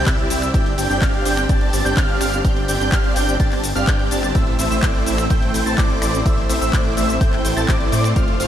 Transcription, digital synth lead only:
0.06 E6
0.30 E6
0.54 G6
0.78 G6
0.90 G6
1.02 F6
1.25 G6
1.49 A6
1.73 A6
1.85 G6
1.97 F6
2.21 F6
2.44 G6
2.68 G6
2.80 G6
2.92 F6
3.16 G6
3.40 A6
3.76 F6
3.87 G6
4.11 A6
4.35 E6
4.59 E6
4.71 E6
4.83 D6
5.07 E6
5.30 G6
5.54 G6
5.66 A6
5.78 D6
6.02 D6
6.26 E6
6.49 E6
6.61 E6
6.73 D6
6.97 E6
7.21 G6
7.45 G6
7.57 A6
7.68 D6
7.92 D6
8.16 F6
8.40 F6

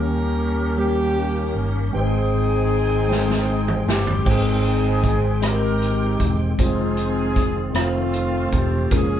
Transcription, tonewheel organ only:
Already playing: D#3 A#3 C#4 G4
1.95 D#3 G#3 C4 G5
4.25 D#3 G#3 C4 G5
6.58 D#3 G#3 C4 F4
7.73 D#3 A3 C4 F4
8.91 F3 A#3 C#4 G#4

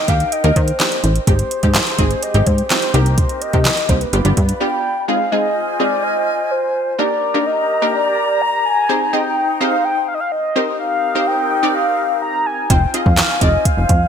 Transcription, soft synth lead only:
Already playing: D#5
0.09 F5
0.32 D#5
0.56 C5
1.28 C5
2.23 D#5
2.47 C5
2.70 C5
2.94 A#4
3.18 C5
3.42 D#5
3.89 C5
4.01 B4
4.61 G5
5.08 F5
5.32 D#5
5.80 D5
6.03 D#5
6.51 C5
6.99 D5
7.46 D#5
7.94 D5
8.41 A#5
8.65 G#5
9.13 G5
9.61 F5
9.84 G5
10.08 F5
10.14 D#5
10.20 F5
10.32 D#5
10.79 F5
11.27 G5
11.74 F5
12.22 A#5
12.46 G#5
12.70 G5
12.87 G5
12.94 F5
13.42 D#5
13.65 F5

